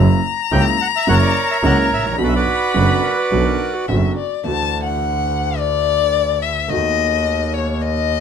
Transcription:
Already playing: double bass F#1, grand piano F#2 C#3 F#3 A#3 E4, violin A#5
0.51 double bass C#2, grand piano C#2 C#3 F#3 A#3 E4, bandoneon G5
0.82 bandoneon F#5
0.96 bandoneon E5
1.07 double bass F#1, grand piano F#2 C#3 F#3 A#3 E4, bandoneon A#4 C#5 F#5
1.23 bandoneon D5
1.51 bandoneon E5
1.63 double bass C#2, grand piano C#2 C#3 F#3 A#3 E4, bandoneon F#5
1.91 double bass A1, bandoneon E5
1.98 grand piano G#1
2.05 grand piano A1
2.12 grand piano A#1
2.18 grand piano B1 B2 D3 F#3 B3 F#4, double bass B1, violin B5
2.23 bandoneon F#4 B4 D5
2.29 bandoneon E5
2.35 bandoneon F#4 B4 D5
2.74 grand piano F#1 F#2 D3 F#3 B3 F#4, double bass F#1
3.03 clarinet A#4
3.17 clarinet B4
3.31 double bass B1, grand piano B1 B2 D3 F#3 B3 F#4, violin F#5
3.46 clarinet A#4
3.74 clarinet F#4
3.88 double bass F#1, grand piano F#1 F#2 D3 F#3 B3 F#4, clarinet F#4, violin E5
4.16 violin D5
4.44 double bass D2, grand piano D2 D3 E3 A3 D4 F#4, violin A5
4.84 violin F#5
5.59 violin D5
6.42 violin E5
6.68 grand piano D#2 D#3 A3 B3 F#4, double bass D#2, violin D#5
7.54 violin C#5
7.82 violin D#5

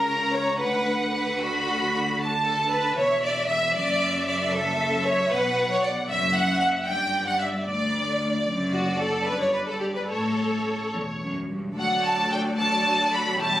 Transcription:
Already playing: double bass section C#2, cello section C#3, viola section A#4, violin section A#4 A#5
0.34 violin section C#5, viola section C#5
0.60 double bass section D2, cello section D3, violin section B4 F#5, viola section B4
1.13 violin section B4, viola section B4
1.39 violin section F#4 B5, viola section F#4
2.21 violin section A5
2.45 violin section A4, viola section A4
2.71 violin section B4, viola section B4
2.97 double bass section E1, cello section E2, violin section C#5 E5, viola section C#5
3.23 violin section D5, viola section D5
3.49 violin section E5, viola section E5
3.75 double bass section F#1, cello section F#2, violin section D5, viola section D5
4.28 violin section D5, viola section D5
4.53 violin section A4, viola section A4
5.05 violin section C#5, viola section C#5
5.31 double bass section B1, cello section B2, violin section B4 F#5, viola section B4
5.71 viola section C#5, violin section C#5
5.83 violin section D5, viola section D5
6.09 double bass section F#1, cello section F#2, violin section E5, viola section E5
6.35 violin section F#5, viola section F#5
6.60 violin section F#5, viola section F#5
6.86 double bass section G1, cello section G2, violin section D5 G5, viola section G5
7.27 viola section F#5, violin section F#5
7.40 violin section E5, viola section E5
7.66 cello section D2, double bass section D2, violin section D5, viola section D5
8.46 double bass section F#1, cello section F#2
8.72 violin section F#4, viola section F#4
9.00 violin section A4, viola section A4
9.26 double bass section G1, cello section G2, violin section B4, viola section B4
9.40 viola section C#5, violin section C#5
9.53 violin section B4, viola section B4
9.67 viola section A4, violin section A4
9.80 violin section G4, viola section G4
9.95 viola section B4, violin section B4
10.09 double bass section A1, cello section A2, violin section A4 C#5, viola section A4
10.94 double bass section E1, cello section E2
11.22 cello section F#2
11.50 cello section G2
11.77 double bass section D2, cello section D2, viola section F#3 F#4, violin section A4 D5 F#5
12.05 violin section A5
12.32 violin section G5
12.56 viola section F#3 F#4, violin section A4 D5 A5
13.13 violin section B5
13.37 double bass section E1, cello section E2, viola section G3 E4, violin section G4 C#5 A5

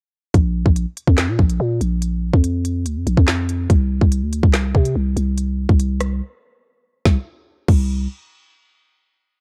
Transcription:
0.34 808-style bass A#1, kick, closed hi-hat
0.66 808-style bass A#1, kick
0.76 closed hi-hat
0.97 closed hi-hat
1.07 808-style bass F2, kick
1.18 snare, clap, closed hi-hat
1.28 808-style bass A#2
1.39 808-style bass A#1, kick
1.50 closed hi-hat
1.60 808-style bass A#2
1.81 808-style bass A#1, closed hi-hat
2.02 closed hi-hat
2.33 808-style bass F2, kick
2.44 closed hi-hat
2.65 closed hi-hat
2.86 808-style bass D2, closed hi-hat
2.96 808-style bass F2
3.07 808-style bass A#1, closed hi-hat
3.17 808-style bass F2, kick
3.28 snare, clap
3.49 closed hi-hat
3.70 808-style bass C2, kick, closed hi-hat
4.01 808-style bass C2, kick
4.12 closed hi-hat
4.22 808-style bass D2
4.33 closed hi-hat
4.43 808-style bass C2, kick
4.54 snare, clap, closed hi-hat
4.75 808-style bass C3, kick
4.85 closed hi-hat
4.96 808-style bass C2
5.17 808-style bass C2, closed hi-hat
5.38 closed hi-hat
5.69 808-style bass C2, kick
5.80 closed hi-hat
6.00 cross-stick, closed hi-hat
7.05 808-style bass C2, kick, snare
7.68 808-style bass C2, kick, crash

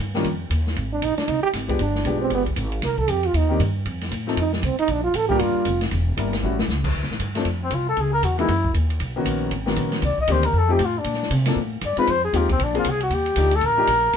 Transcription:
0.00 upright bass G2
0.14 grand piano D#3 G3 A#3 C#4 F4, snare
0.24 upright bass F2, kick, ride
0.50 upright bass D#2, kick, hi-hat pedal, ride
0.67 snare
0.76 upright bass G#1, kick, ride
0.92 trombone D4
1.02 upright bass A#1, trombone D#4, kick, hi-hat pedal, ride
1.17 trombone D4, muted upright bass stroke, snare, ride
1.28 upright bass C2, trombone D#4, kick, ride
1.43 trombone G4, muted upright bass stroke
1.53 upright bass G#1, kick, snare, hi-hat pedal, ride
1.68 grand piano F3 G#3 B3 D4 G4, kick, ride
1.79 upright bass G1, trombone D4, ride
1.95 snare
2.05 upright bass B1, grand piano F3 G#3 B3 D4 G4, kick, hi-hat pedal, ride
2.21 trombone C4
2.30 upright bass G1, kick, ride
2.34 trombone B3
2.46 kick, ride
2.56 upright bass G#1, kick, hi-hat pedal, ride
2.72 ride
2.82 upright bass C2, trombone A#4, kick, snare, ride
2.98 trombone A4, kick
3.08 upright bass F2, trombone G4, kick, hi-hat pedal, ride
3.23 trombone F4, ride
3.34 upright bass D#2, trombone D#4, kick, ride
3.49 grand piano D#3 A#3 C4 D4 G4
3.59 upright bass G2, kick, hi-hat pedal, ride
3.85 upright bass F2, kick, ride
4.01 snare, ride
4.11 upright bass A2, kick, hi-hat pedal, ride
4.27 grand piano F3 A3 C4 D#4 A4, snare
4.37 upright bass F2, trombone D#4, kick, ride
4.53 trombone G3, snare
4.62 upright bass C2, trombone C4, kick, hi-hat pedal, ride
4.77 trombone D#4, muted upright bass stroke, ride
4.88 upright bass A#1, kick, ride
4.92 trombone D4
5.04 trombone F4
5.14 upright bass A1, trombone A4, kick, hi-hat pedal, ride
5.28 grand piano G3 A#3 D4 F4 A#4, trombone G4, kick
5.39 upright bass G1, trombone F4, kick, ride
5.55 muted upright bass stroke
5.65 upright bass F1, kick, hi-hat pedal, ride
5.81 snare, ride
5.91 upright bass E1, kick, ride
6.17 upright bass G1, grand piano G3 A#3 D4 E4 A#4, kick, hi-hat pedal, ride
6.33 snare, ride
6.43 upright bass A1, grand piano G3 A3 C#4 E4 F#4
6.59 snare
6.68 upright bass C#2, snare, hi-hat pedal
6.84 kick, crash
6.94 upright bass D2, kick
7.02 upright bass C2, snare
7.11 upright bass A1, snare
7.19 upright bass G2, kick, hi-hat pedal, ride
7.35 grand piano F3 A3 C4 D4 A4, snare, ride
7.45 upright bass F2, kick, ride
7.63 trumpet C4
7.70 upright bass C2, trumpet F4, kick, hi-hat pedal, ride
7.89 trumpet A4
7.97 upright bass C#2, kick, ride
8.01 trumpet G#4
8.13 trumpet A#4
8.23 upright bass E2, trumpet F#4, kick, hi-hat pedal, ride
8.38 grand piano E3 G#3 A#3 D#4 F#4, trumpet E4, ride
8.48 upright bass F#2, kick, ride
8.64 kick
8.74 upright bass D#2, kick, hi-hat pedal, ride
8.90 ride
9.00 upright bass B1, kick, ride
9.16 grand piano D#3 A#3 B3 C#4 F#4
9.25 upright bass A#1, kick, hi-hat pedal, ride
9.51 upright bass G#1, kick, ride
9.66 grand piano D#3 A#3 B3 C#4 F#4, snare
9.76 upright bass A#1, kick, hi-hat pedal, ride
9.92 snare, ride
10.02 upright bass C2, trumpet D5, kick, ride
10.17 trumpet D#5, muted upright bass stroke, kick
10.28 upright bass D2, grand piano D#3 A#3 C4 D4 G4, kick, hi-hat pedal, ride
10.32 trumpet C5
10.43 trumpet A#4, ride
10.53 upright bass F2, kick
10.58 trumpet A4
10.68 grand piano F3 A3 C4 D#4 G4
10.73 trumpet G4
10.79 upright bass A2, kick, hi-hat pedal, ride
10.85 trumpet F4
10.98 trumpet D4
11.04 upright bass A#2, kick, ride
11.14 snare
11.23 snare
11.31 upright bass C3, kick, hi-hat pedal, ride
11.46 grand piano F3 A#3 C4 D4 A4, snare, ride
11.56 upright bass A2, kick
11.81 upright bass G2, trumpet D5, kick, hi-hat pedal, ride
11.97 grand piano F3 G#3 C4 D#4 F4, trumpet B4, muted upright bass stroke, ride
12.07 upright bass F2, trumpet C5, kick, ride
12.24 trumpet G#4
12.33 upright bass D#2, grand piano F3 G#3 C4 D#4 G4, trumpet F4, kick, hi-hat pedal, ride
12.49 trumpet C4, kick, ride
12.59 upright bass A#1, kick, ride
12.63 trumpet D4
12.73 grand piano F3 A#3 C4 D4 G#4, ride
12.79 trumpet F4
12.84 upright bass C2, kick, hi-hat pedal, ride
12.90 trumpet G#4
13.00 trumpet F#4, ride
13.10 upright bass D#2, trumpet G4, kick, ride
13.26 ride
13.36 upright bass D2, grand piano F3 A3 D4 D#4 G4, kick, hi-hat pedal, ride
13.51 trumpet A4, ride
13.61 upright bass A1, kick, ride
13.66 trumpet A#4
13.77 grand piano F3 A3 D4 D#4 G4
13.87 upright bass A#1, kick, hi-hat pedal, ride
14.13 upright bass C2, kick, snare, ride

